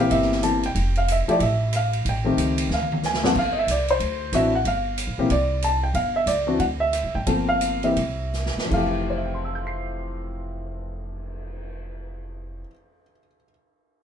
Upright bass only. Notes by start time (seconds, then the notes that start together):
0.10 G1
0.75 F1
1.28 muted upright bass stroke
1.40 A1
2.05 A1
2.37 C#2
2.69 D2
3.34 G1
3.67 C2
3.99 D2
4.32 A1
4.65 G1
5.07 A1
5.18 A#1
5.30 C2
5.94 G1
6.26 C#2
6.59 D2
7.03 C2
7.15 G#1
7.27 G1
7.96 C2
8.56 muted upright bass stroke
8.71 F1